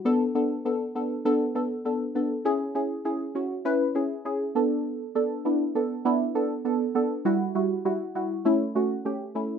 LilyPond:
\new Staff \with { instrumentName = "Synth stab" } { \time 4/4 \key b \minor \tempo 4 = 100 <b d' a'>8 <b d' a'>8 <b d' a'>8 <b d' a'>8 <b d' a'>8 <b d' a'>8 <b d' a'>8 <b d' a'>8 | <cis' e' gis'>8 <cis' e' gis'>8 <cis' e' gis'>8 <cis' e' fis'>8 <cis' e' b'>8 <cis' e' gis'>8 <cis' e' gis'>8 <b d' a'>8~ | <b d' a'>8 <b d' a'>8 <b d' e'>8 <b d' a'>8 <b d' e'>8 <b d' a'>8 <b d' a'>8 <b d' a'>8 | <g e' fis'>8 <g e' fis'>8 <g e' fis'>8 <g e' fis'>8 <a cis' e'>8 <a cis' fis'>8 <a cis' g'>8 <a cis' e'>8 | }